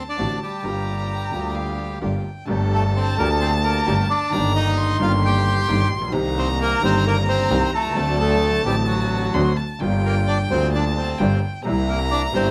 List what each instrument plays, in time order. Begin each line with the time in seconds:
Already playing: violin A5
0.09 bandoneon D4 D5
0.17 double bass A1, upright piano A1 A2 D3 A3 C4 F#4, string section C4 D4 F#4
0.43 bandoneon G3 G4
0.62 upright piano G1 G2 D3 G3 A#3 F4, double bass G1, string section A#3 F4 G4, violin A#5
1.30 upright piano D2 D3 G3 A#3 F4, double bass D2, string section A#3 F4 G4
1.55 violin F5
2.01 upright piano G1 G2 D3 G3 A#3 F4, double bass G1, string section A#3 F4 G4, violin G5
2.45 upright piano G1 G2 D3 A3 A#3, double bass G1, string section G4 A4, violin A5
2.50 upright piano G4
2.73 bandoneon A3 A4
2.96 bandoneon C4 C5
3.16 upright piano D2 D3 A3 A#3, double bass D2, bandoneon A#3 A#4, string section G4 A4
3.20 upright piano G4
3.41 bandoneon C4 C5
3.64 bandoneon A#3 A#4
3.86 upright piano G1 G2 D3 A3 A#3 G4, double bass G1, string section A#3 G4 A4
4.10 bandoneon D4 D5
4.30 upright piano G1 G2 D#3 G3 A#3, double bass G1, string section A#3 D#4 G4, violin A#5
4.34 upright piano G4
4.56 bandoneon D#4 D#5
4.78 violin C6
4.98 upright piano G1 G2 D#3 G3 A#3 G4, double bass G1, string section A#3 D#4 G4
5.02 bandoneon F4 F5
5.25 bandoneon G4 G5
5.67 upright piano G1 G2 D#3 G3 A#3 G4, double bass G1, string section A#3 D#4 G4
5.92 double bass A#1
5.96 upright piano A1
6.01 upright piano A#1
6.08 upright piano B1 D#3
6.12 upright piano C2 C3 A#3 C4 G4, double bass C2, string section A#3 C4 D#4, violin A#5
6.38 bandoneon C4 C5
6.61 bandoneon A#3 A#4
6.80 double bass G1, upright piano G1 G2 D#3 A#3 C4, string section A#3 C4 D#4
6.84 bandoneon C4 C5, upright piano G4
7.07 bandoneon A#3 A#4
7.28 bandoneon C4 C5
7.49 double bass C2, upright piano C2 C3 D#3 A#3 C4 G4, string section A#3 C4 D#4
7.72 double bass C2, bandoneon A3 A4
7.79 upright piano B1
7.84 upright piano C2
7.90 upright piano C#2
7.95 upright piano D2 D3 A3 C4 F#4, double bass D2, string section F#3 C4 D4, violin A5
8.20 bandoneon A3 A4
8.63 double bass A1, upright piano A1 A2 D3 A3 C4, string section F#3 C4 D4, bandoneon G3 G4
8.68 upright piano F#4
8.87 bandoneon F#3 F#4
9.33 upright piano D2 D3 A3 C4 F#4, double bass D2, string section F#3 C4 D4, violin C6
9.57 violin A5
9.79 double bass G1, upright piano G1 G2 D3 G3 A#3 F4, string section G3 A#3 F4, violin G5
10.05 bandoneon A#3 A#4
10.27 bandoneon D4 D5
10.48 double bass D2, upright piano D2 D3 G3 A#3, string section G3 A#3 F4, bandoneon C4 C5
10.53 upright piano F4
10.73 bandoneon D4 D5, violin A5
10.97 bandoneon C4 C5
11.18 double bass G1, upright piano G1 G2 D3 G3 A#3 F4, string section G3 A#3 F4, violin G5
11.63 upright piano C2 C3 G3 A#3, double bass C2, string section A#3 C4 E4, violin A#5
11.67 upright piano E4
11.88 bandoneon A#3 A#4
12.11 bandoneon D4 D5
12.32 double bass G1, upright piano G1 G2 C3 G3 A#3, string section A#3 C4 E4, bandoneon C4 C5
12.36 upright piano E4